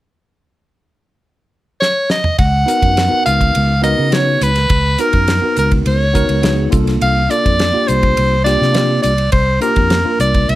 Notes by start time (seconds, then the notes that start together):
1.80 C#5, snare
2.10 D#5, snare
2.24 mid tom
2.39 C#2 F#5, kick, ride
2.66 B3 D#4 F#4 A#4, hi-hat pedal, ride
2.82 F#2, kick, ride
2.97 snare, ride
3.08 B3 D#4 F#4 A#4, muted fingered electric bass stroke
3.26 C#2 F5, hi-hat pedal, ride
3.41 kick, ride
3.55 C#2, ride
3.82 B3 D#4 F#4 A#4 D#5, hi-hat pedal, ride
3.99 C#3
4.11 B3 D#4 F#4 C#5, snare, ride
4.41 C#2 B4, hi-hat pedal, ride
4.54 F#4 A#4, snare, ride
4.70 C#2, kick, ride
4.98 B3 D#4 F#4 A#4, hi-hat pedal, ride
5.13 F#2, kick, ride
5.28 snare, ride
5.42 B3 D#4 F#4 A#4, muted fingered electric bass stroke
5.56 C#2 A#4, hi-hat pedal, ride
5.71 kick, ride
5.86 C#2 C#5, ride
6.13 B3 D#4 F#4 A#4, kick, hi-hat pedal, ride
6.29 C#2, ride
6.42 B3 D#4 F#4 G#4, snare, ride
6.70 C2 A#3 D4 F4 A4, kick, hi-hat pedal, ride
6.87 snare, ride
7.01 C2 F5, ride
7.29 A#3 D4 F4 A4 D5, hi-hat pedal, ride
7.46 F2, kick, ride
7.59 snare, ride
7.72 A#3 D4 F4 G4, muted fingered electric bass stroke
7.88 C2 C5, hi-hat pedal, ride
8.03 kick, ride
8.17 C2, ride
8.44 A#3 D4 F4 G4 D5, snare, hi-hat pedal, ride
8.61 C3, snare
8.72 A#3 D4 F4 G4, snare, ride
9.03 C2 D5, hi-hat pedal, ride
9.18 F4 C5, ride
9.32 C2 C5, kick, ride
9.61 A#3 D4 F4 G4 A#4, hi-hat pedal, ride
9.76 F2, kick, ride
9.90 snare, ride
10.04 A#3 D4 F4 A#4, muted fingered electric bass stroke
10.19 C2 D5, hi-hat pedal, ride
10.34 kick, ride
10.49 C2 E5, ride